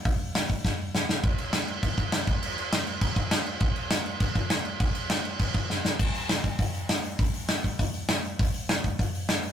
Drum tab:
CC |--------|xxxxxxxx|xxxxxxxx|xxxxxxxx|
HH |o-o-----|--------|--------|--------|
SD |--o-o-oo|--o---o-|--o---o-|--o---o-|
BD |o--oo---|o---oo-o|----oo--|o---oo--|

CC |xxxxxx--|x-------|--------|--------|
HH |--------|-ooooooo|oooooooo|oooooooo|
SD |--o---oo|--o---o-|--o---o-|--o---o-|
BD |o---oo--|o--oo---|o--oo---|o--oo---|